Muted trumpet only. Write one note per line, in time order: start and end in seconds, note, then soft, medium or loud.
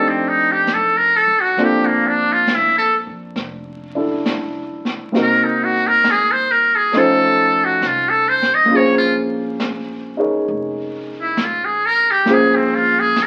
0.00 0.10 A4 medium
0.09 0.30 C4 medium
0.28 0.54 D#4 medium
0.52 0.75 G4 medium
0.74 0.99 A4 medium
0.97 1.18 A#4 medium
1.16 1.42 A4 medium
1.41 1.66 F#4 medium
1.64 1.88 G4 medium
1.86 2.09 A#3 medium
2.07 2.34 D4 medium
2.33 2.57 F4 medium
2.55 2.77 E4 medium
2.78 2.96 A4 medium
5.23 5.46 A#4 medium
5.45 5.66 D#4 medium
5.64 5.89 F#4 medium
5.88 6.13 A#4 medium
6.11 6.34 G#4 medium
6.32 6.53 C5 medium
6.52 6.77 A#4 medium
6.76 7.00 G#4 medium
6.98 7.66 A4 medium
7.65 7.88 F#4 medium
7.87 8.11 F4 medium
8.09 8.30 A4 medium
8.29 8.56 C5 medium
8.55 8.78 D#5 medium
8.76 8.98 C#5 medium
8.98 9.17 F4 medium
11.21 11.45 E4 medium
11.44 11.67 F4 medium
11.65 11.88 G#4 medium
11.86 12.13 A#4 medium
12.11 12.35 G4 medium
12.33 12.58 G#4 medium
12.56 12.77 C4 medium
12.75 13.01 F4 medium
13.00 13.24 G#4 medium
13.23 13.27 A#4 medium